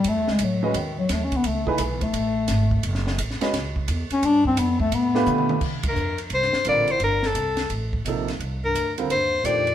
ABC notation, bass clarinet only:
X:1
M:4/4
L:1/16
Q:"Swing" 1/4=172
K:Gblyd
V:1 name="Bass clarinet" clef=bass
=A,2 _A,2 G,2 _F,2 E,2 G,2 (3=A,2 D2 _C2 | =A,2 D,2 _F,2 A,8- A,2 | z12 z2 D2 | =D2 C2 =B,2 =A,2 B,6- B, z |
[K:Cdor] z2 G,,4 z2 G,,4 B,,2 A,,2 | G,,2 F,,6 z8 | z2 G,,4 z2 G,,4 B,,4 |]